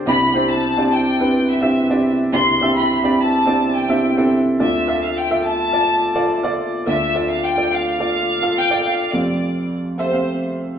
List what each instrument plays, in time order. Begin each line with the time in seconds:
0.06 upright piano C2 C3 C4 D4 E4 G4 D5, violin section B5
0.34 upright piano C4 D4 E4 G4 C5
0.49 violin section A5
0.77 upright piano C4 D4 E4 G4 D5
0.92 violin section G5
1.19 upright piano C4 D4 E4 G4 B4
1.50 violin section E5
1.61 upright piano C4 D4 E4 G4 E5
1.90 upright piano C4 D4 E4 G4 D5
2.32 upright piano C2 C3 C4 D4 E4 G4 D5, violin section C6
2.61 upright piano C4 D4 E4 G4 E5
2.77 violin section B5
3.04 upright piano C4 D4 E4 G4 D5
3.20 violin section A5
3.46 upright piano C4 D4 E4 G4 D5
3.76 violin section G5
3.88 upright piano C4 D4 E4 G4 E5
4.17 upright piano C4 D4 E4 G4 A4
4.59 upright piano D2 D3 F4 A4 D5, violin section E5
4.87 upright piano F4 A4 E5
5.03 violin section F5
5.18 violin section G5
5.30 upright piano F4 A4 E5
5.46 violin section A5
5.72 upright piano F4 A4 D5
6.15 upright piano F4 A4 D5
6.43 upright piano F4 A4 D5
6.86 upright piano D2 D3 F4 A4 D5, violin section E5
7.14 upright piano F4 A4 D5
7.30 violin section F5
7.44 violin section G5
7.57 upright piano F4 A4 D5
7.72 violin section F5
7.99 upright piano F4 A4 D5
8.42 upright piano F4 A4 F5
8.57 violin section G5
8.70 upright piano F4 A4 D5
8.86 violin section F5
9.13 upright piano F1 F2 C4 G4 A4 F5, violin section D5
9.98 upright piano C4 G4 A4 E5, violin section C5
10.12 upright piano C4 G4 A4 F5